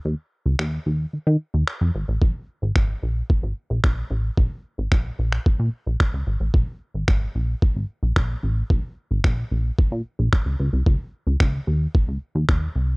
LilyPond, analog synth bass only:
\new Staff \with { instrumentName = "Analog synth bass" } { \clef bass \time 4/4 \key aes \mixolydian \tempo 4 = 111 ees,16 r8 des,16 ees,8 ees,8 ees16 ees16 r16 ees,16 r16 f,16 aes,,16 a,,16 | bes,,16 r8 aes,,16 aes,,8 bes,,8 r16 aes,,16 r16 bes,,16 bes,,8 a,,8 | bes,,16 r8 aes,,16 bes,,8 bes,,8 bes,16 bes,16 r16 bes,,16 r16 des,16 aes,,16 a,,16 | bes,,16 r8 aes,,16 aes,,8 bes,,8 r16 aes,,16 r16 bes,,16 bes,,8 a,,8 |
bes,,16 r8 aes,,16 bes,,8 bes,,8 bes,16 bes,16 r16 bes,,16 r16 des,16 des,16 c,16 | des,16 r8 des,16 des,8 ees,8 r16 des,16 r16 ees,16 ees,8 c,8 | }